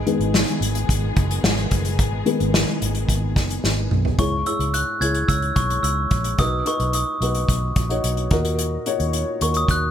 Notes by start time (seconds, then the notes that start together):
Already playing: D#3 G#3 B3 G#4
0.06 D#3 G#3 B3, closed hi-hat
0.19 G#1, closed hi-hat
0.34 snare
0.48 closed hi-hat
0.61 G#1, closed hi-hat
0.75 closed hi-hat
0.89 G#1, kick, closed hi-hat
1.16 F#1, kick, closed hi-hat
1.31 closed hi-hat
1.43 G#1, snare
1.58 closed hi-hat
1.71 F#1, kick, closed hi-hat
1.85 closed hi-hat
1.99 G#1, kick, closed hi-hat
2.26 D#3 G#3 B3, closed hi-hat
2.40 G#1, closed hi-hat
2.54 snare
2.82 G#1, closed hi-hat
2.95 closed hi-hat
3.08 G#1, kick, closed hi-hat
3.36 F#1, kick, snare, closed hi-hat
3.50 closed hi-hat
3.64 G#1, snare
3.91 B1, mid tom
4.05 floor tom
4.18 C#2 G#2 E4 G#4 C#5 C#6, kick, closed hi-hat
4.46 E4 G#4 C#5 E6, closed hi-hat
4.59 C#2, closed hi-hat
4.74 F#6, closed hi-hat
5.00 C#2 E4 G#4 C#5 G#6, closed hi-hat
5.14 closed hi-hat
5.28 C#2 E6, kick, closed hi-hat
5.42 closed hi-hat
5.56 B1 C#6, kick, closed hi-hat
5.70 closed hi-hat
5.83 C#2 E6, closed hi-hat
6.11 A#1, kick, closed hi-hat
6.24 closed hi-hat
6.38 B1 D#4 F#4 B4 D#6, kick, closed hi-hat
6.65 D#4 F#4 B4 C#6, closed hi-hat
6.80 B1, closed hi-hat
6.93 D#6, closed hi-hat
7.21 B1 D#4 F#4 B4, closed hi-hat
7.35 closed hi-hat
7.49 B1, kick, closed hi-hat
7.76 A#1, kick, closed hi-hat
7.89 D#4 F#4 C#5, closed hi-hat
8.04 B1, closed hi-hat
8.17 closed hi-hat
8.31 D#2 A#2 D#4 F#4 A#4, kick, closed hi-hat
8.45 closed hi-hat
8.59 closed hi-hat
8.86 D#4 F#4 C#5, closed hi-hat
9.00 D#2, closed hi-hat
9.13 closed hi-hat
9.41 D#2 D#4 F#4 A#4 C#6, closed hi-hat
9.54 D#6, closed hi-hat
9.68 D#2 F#6, kick, closed hi-hat